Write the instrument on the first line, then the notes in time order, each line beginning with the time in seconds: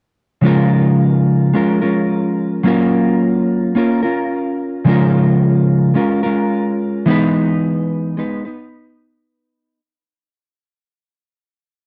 clean electric guitar
0.41 C#3 F3 G#3 C#4 F4
0.46 A#4
1.54 G#3 C#4 F4 A#4
1.82 G#3 C#4 F4 A#4
2.63 F#3 A#3 C#4 F4 A#4
3.75 A#3 C#4 F4 A#4
4.03 C#4 F4 A#4
4.85 C#3 F3 G#3 C#4 F4
4.89 A#4
5.94 G#3 C#4 F4 A#4
6.23 G#3 C#4 F4 A#4
7.06 E3 G#3 B3 D#4
7.10 B4
8.17 G#3 B3 D#4 B4
8.45 B3 D#4 B4